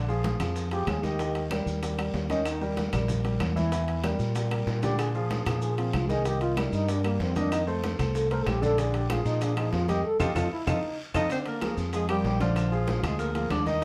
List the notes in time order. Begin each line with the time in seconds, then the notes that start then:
Already playing: A#1
0.08 F3 F4 G#4, high bongo, high conga, maracas
0.24 high bongo, high conga, high timbale, short guiro, maracas
0.40 F2 F3 F4 G#4, high conga, low conga, high timbale, short guiro, claves, maracas
0.56 high bongo, high conga, long guiro, maracas
0.71 F3 F4 G4 G#4, high bongo, high conga, high timbale, maracas
0.87 D#2 G#4, high bongo, low bongo, high conga, high timbale, low timbale, short guiro, claves, maracas
1.03 D#3 D#4 G4 D#5, high bongo, high conga, short guiro, maracas
1.19 D#3 D#4 D#5, high bongo, high conga, high timbale, maracas
1.35 high bongo, high conga, high timbale, maracas
1.51 G3 G4 A#4, high bongo, high conga, high timbale, short guiro, claves, maracas
1.66 D#2, high bongo, high conga, short guiro, maracas
1.83 G3 G4 A#4, high bongo, high conga, high timbale, long guiro, maracas
1.98 G3 G4 A#4, high conga, high timbale, claves, maracas
2.14 D#2, high bongo, low bongo, high conga, low timbale, short guiro, maracas
2.30 D#3 C#4 D#4 D#5, high bongo, high conga, high timbale, short guiro, maracas
2.45 D#4, high bongo, high conga, high timbale, long guiro, claves, maracas
2.61 G3 G4 A#4, high bongo, high conga, maracas
2.77 high bongo, high conga, high timbale, short guiro, maracas
2.93 A#1 G3 G4 A#4, high conga, low conga, high timbale, short guiro, claves, maracas
3.08 high bongo, high conga, low conga, long guiro, maracas
3.24 G3 G4 A#4, high bongo, high conga, high timbale, maracas
3.40 E2, high bongo, low bongo, high conga, high timbale, low timbale, short guiro, claves, maracas
3.56 E3 E4 E5, high bongo, high conga, short guiro, maracas
3.72 E3 E4 E5, high bongo, high conga, high timbale, maracas
3.88 high bongo, high conga, high timbale, maracas
4.04 G3 G4 A#4, high bongo, high conga, high timbale, short guiro, claves, maracas
4.19 A#2, high bongo, high conga, short guiro, maracas
4.35 G3 G4 A#4, high bongo, high conga, high timbale, long guiro, maracas
4.51 G3 G4 A#4, high conga, high timbale, claves, maracas
4.67 A#2, high bongo, low bongo, high conga, short guiro, maracas
4.82 D3 D4 G4 D5, high bongo, high conga, high timbale, short guiro, maracas
4.99 G#4, high bongo, high conga, high timbale, long guiro, claves, maracas
5.14 F3 F4 G#4, high bongo, high conga, maracas
5.30 high bongo, high conga, high timbale, short guiro, maracas
5.46 A#2 F3 F4 G#4, high bongo, high conga, low conga, high timbale, short guiro, claves, maracas
5.62 G#4, high bongo, high conga, long guiro, maracas
5.78 F3 C4 F4 G#4, high conga, high timbale, maracas
5.93 C2 F4, low bongo, high conga, high timbale, short guiro, claves, maracas
6.09 D#3 D#4 G#4 D#5, low bongo, high conga, short guiro, maracas
6.25 D#3 D#4 G4 D#5, high bongo, high conga, high timbale, maracas
6.41 F4, high bongo, high conga, high timbale, maracas
6.57 G3 E4 G4 A#4, high bongo, high conga, high timbale, short guiro, claves, maracas
6.72 G2 D#4, high bongo, high conga, short guiro, maracas
6.88 G3 D4 G4 A#4, high bongo, high timbale, maracas
7.04 G3 A#3 G4 A#4, high conga, high timbale, claves, maracas
7.20 F2 C4, high bongo, low bongo, high conga, short guiro, maracas
7.36 D#3 D4 D#4 D#5, high bongo, high conga, high timbale, short guiro, maracas
7.52 D#4, high bongo, high conga, high timbale, long guiro, claves, maracas
7.67 A3 A4 C5, high bongo, high conga, maracas
7.83 high bongo, high conga, high timbale, short guiro, maracas
7.99 C2 A3 A4 C5, high conga, low conga, high timbale, short guiro, claves, maracas
8.15 A4, high bongo, high conga, long guiro, maracas
8.31 A3 A4 A#4 C5, high bongo, high conga, high timbale, maracas
8.46 A#1 G4, high bongo, low bongo, high conga, high timbale, short guiro, claves, maracas
8.62 D3 D4 A4 D5, high conga, short guiro, maracas
8.78 D3 D4 G#4 D5, high bongo, high conga, high timbale, long guiro, maracas
8.94 G4, high bongo, high conga, high timbale, maracas
9.10 F3 F4 G#4, high bongo, high conga, high timbale, short guiro, claves, maracas
9.25 A#2 D#4, high bongo, high conga, short guiro, maracas
9.41 F3 D4 F4 G#4, high bongo, high conga, high timbale, maracas
9.57 F3 D#4 F4 G#4, high conga, high timbale, claves, maracas
9.73 F2 F4, high bongo, low bongo, high conga, low timbale, short guiro, maracas
9.88 D#3 D#4 G4 D#5, high bongo, high conga, high timbale, short guiro, maracas
10.05 A4
10.20 F2 D#4 F4 G4 A4, low bongo, low conga, high timbale, long guiro, claves, maracas
10.35 F2 D#4 F4 A4, low bongo, low conga, high timbale, long guiro, claves, maracas
10.52 E4
10.67 F2 D#4 F4 A4, low bongo, low conga, high timbale, long guiro, claves, maracas
11.14 F2 D#4 F4 A4 D#5, low bongo, low conga, high timbale, claves, maracas
11.30 D3 C4 D4 C5 D5, high bongo, high conga, high timbale, long guiro, maracas
11.46 A#3 A#4, high bongo, high conga, high timbale, maracas
11.61 F3 F4 G#4, high bongo, high conga, high timbale, short guiro, claves, maracas
11.77 F2, high bongo, high conga, short guiro, maracas
11.93 F3 G#3 F4 G#4, high bongo, high timbale, long guiro, maracas
12.09 F3 G3 F4 G4 A#4, high conga, high timbale, claves, maracas
12.24 A#1, high bongo, low bongo, high conga, low timbale, short guiro, maracas
12.40 D3 F3 D4 F4 D5, high bongo, high conga, high timbale, short guiro, maracas
12.56 high bongo, high timbale, long guiro, claves, maracas
12.72 F3 F4 G#4, high bongo, high conga, maracas
12.87 high bongo, high conga, high timbale, short guiro, maracas
13.03 D2 F3 G#3 F4 G#4, high conga, low conga, high timbale, short guiro, claves, maracas
13.19 A#3 A#4, high bongo, high conga, long guiro, maracas
13.35 F3 A#3 F4 G#4 A#4, high bongo, high conga, high timbale, maracas
13.50 D#2 D4 D5, high bongo, low bongo, high conga, high timbale, low timbale, short guiro, claves, maracas
13.66 D#3 D#4 D#5, high bongo, high conga, short guiro, maracas